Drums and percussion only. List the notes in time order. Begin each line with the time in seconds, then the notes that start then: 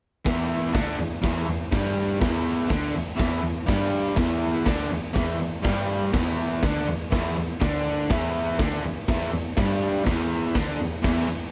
0.26 kick, snare, crash
0.75 kick, snare, crash
1.24 kick, snare, crash
1.72 kick, snare, crash
2.22 kick, snare, crash
2.70 kick, snare, crash
3.19 kick, snare, crash
3.68 kick, snare, crash
4.16 kick, snare, crash
4.66 kick, snare, crash
5.16 kick, snare, crash
5.64 kick, snare, crash
6.13 kick, snare, crash
6.63 kick, snare, crash
7.12 kick, snare, crash
7.61 kick, snare, crash
8.10 kick, snare, crash
8.59 kick, snare, crash
9.08 kick, snare, crash
9.57 kick, snare, crash
10.06 kick, snare, crash
10.55 kick, snare, crash
11.04 kick, snare, crash